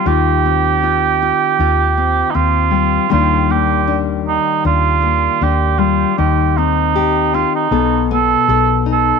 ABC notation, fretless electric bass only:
X:1
M:4/4
L:1/8
Q:1/4=78
K:Fdor
V:1 name="Fretless electric bass" clef=bass
E,,4 E,,2 E,,2 | E,,4 E,,2 E,,2 | E,,4 =B,,,2 B,,,2 |]